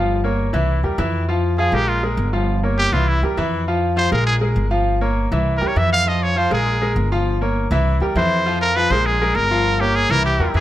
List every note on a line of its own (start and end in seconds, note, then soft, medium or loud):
0.00 0.49 G1 medium
0.00 0.19 F3 medium
0.00 0.19 F4 medium
0.00 0.19 F5 medium
0.24 0.48 A#3 medium
0.24 0.49 A#4 medium
0.24 0.49 C#5 medium
0.53 0.82 C2 loud
0.53 0.78 E3 medium
0.53 0.78 E4 medium
0.53 0.78 E5 medium
0.83 0.97 E2 medium
0.83 0.96 G3 medium
0.83 0.96 G4 medium
0.83 0.96 A#4 medium
0.98 1.68 F2 loud
0.98 1.23 E3 medium
0.98 1.23 E4 medium
0.98 1.23 E5 medium
1.29 1.53 F3 medium
1.29 1.53 F4 medium
1.29 1.54 F5 medium
1.58 1.70 F3 medium
1.58 1.71 F4 medium
1.58 1.75 G#4 medium
1.58 1.71 F5 medium
1.72 2.14 A#1 loud
1.72 1.98 G#3 medium
1.72 1.90 G4 medium
1.72 1.98 G#4 medium
1.72 1.98 A#4 medium
1.88 2.03 F4 medium
2.03 2.28 G#3 medium
2.03 2.28 G#4 medium
2.03 2.28 A#4 medium
2.17 2.87 G1 loud
2.33 2.57 F3 medium
2.33 2.58 F4 medium
2.33 2.58 F5 medium
2.63 2.88 A#3 medium
2.63 2.88 A#4 medium
2.63 2.88 C#5 medium
2.78 2.94 G4 loud
2.92 3.20 C2 medium
2.92 3.17 E3 medium
2.92 3.18 E4 medium
2.92 3.10 F4 medium
2.92 3.18 E5 medium
3.08 3.23 E4 medium
3.23 3.36 E2 medium
3.23 3.35 G3 medium
3.23 3.35 G4 medium
3.23 3.35 A#4 medium
3.37 4.07 F2 loud
3.37 3.62 E3 medium
3.37 3.62 E4 loud
3.37 3.62 E5 medium
3.67 3.92 F3 medium
3.67 3.92 F4 medium
3.67 3.92 F5 medium
3.96 4.09 F3 medium
3.96 4.09 F4 medium
3.96 4.11 C5 loud
3.96 4.09 F5 loud
4.11 4.54 A#1 loud
4.11 4.36 G#3 medium
4.11 4.36 G#4 medium
4.11 4.36 A#4 medium
4.11 4.26 A#4 medium
4.26 4.35 G#4 medium
4.41 4.66 G#3 medium
4.41 4.66 G#4 medium
4.41 4.66 A#4 medium
4.56 5.26 G1 loud
4.71 4.96 F3 medium
4.71 4.96 F4 medium
4.71 4.96 F5 medium
5.01 5.26 A#3 medium
5.01 5.26 A#4 medium
5.01 5.26 C#5 medium
5.32 5.59 C2 loud
5.32 5.56 E3 medium
5.32 5.57 E4 medium
5.32 5.57 E5 medium
5.57 5.69 A#4 medium
5.61 5.75 E2 medium
5.61 5.74 G3 medium
5.61 5.74 G4 medium
5.61 5.74 A#4 medium
5.67 5.79 C#5 medium
5.76 6.46 F2 loud
5.76 6.01 E3 medium
5.76 6.01 E4 medium
5.76 6.01 E5 medium
5.76 5.92 E5 medium
5.92 6.09 F5 loud
6.07 6.31 F3 medium
6.07 6.31 F4 medium
6.07 6.24 D#5 medium
6.07 6.31 F5 medium
6.23 6.39 C#5 medium
6.36 6.48 F3 medium
6.36 6.48 F4 medium
6.36 6.52 C5 medium
6.36 6.49 F5 medium
6.50 6.93 A#1 loud
6.50 6.75 G#3 medium
6.50 6.76 G#4 medium
6.50 6.94 G#4 medium
6.50 6.76 A#4 medium
6.81 7.06 G#3 medium
6.81 7.06 G#4 medium
6.81 7.06 A#4 medium
6.96 7.65 G1 loud
7.12 7.36 F3 medium
7.12 7.36 F4 medium
7.12 7.36 F5 medium
7.41 7.66 A#3 medium
7.41 7.66 A#4 medium
7.41 7.66 C#5 medium
7.71 7.99 C2 loud
7.71 7.96 E3 medium
7.71 7.96 E4 loud
7.71 7.96 E5 medium
8.00 8.14 E2 medium
8.00 8.13 G3 medium
8.00 8.14 G4 medium
8.00 8.14 A#4 medium
8.16 8.85 F2 loud
8.16 8.41 E3 medium
8.16 8.40 E4 medium
8.16 8.58 C5 medium
8.16 8.41 E5 medium
8.46 8.70 F3 medium
8.46 8.70 F4 medium
8.46 8.71 F5 medium
8.61 8.77 A#4 loud
8.76 8.88 F3 medium
8.76 8.88 F4 loud
8.76 8.92 B4 loud
8.76 8.89 F5 medium
8.90 9.32 A#1 loud
8.90 9.16 G#3 medium
8.90 9.16 G#4 medium
8.90 9.16 A#4 medium
8.90 9.07 C5 loud
9.06 9.37 G#4 medium
9.21 9.45 G#3 medium
9.21 9.46 G#4 medium
9.21 9.46 A#4 medium
9.35 10.04 G1 loud
9.35 9.82 A#4 loud
9.51 9.75 F3 medium
9.51 9.75 F4 medium
9.51 9.75 F5 medium
9.80 10.05 A#3 medium
9.80 9.97 G4 medium
9.80 10.05 A#4 medium
9.80 10.05 C#5 medium
9.96 10.12 G#4 loud
10.10 10.38 C2 loud
10.10 10.34 E3 medium
10.10 10.35 E4 medium
10.10 10.25 A#4 loud
10.10 10.35 E5 medium
10.25 10.53 G4 medium
10.39 10.53 E2 medium
10.39 10.52 G3 medium
10.39 10.52 G4 medium
10.39 10.52 A#4 medium
10.54 10.60 F2 medium
10.54 10.60 E3 medium
10.54 10.60 E4 medium
10.54 10.60 G#4 loud
10.54 10.60 E5 medium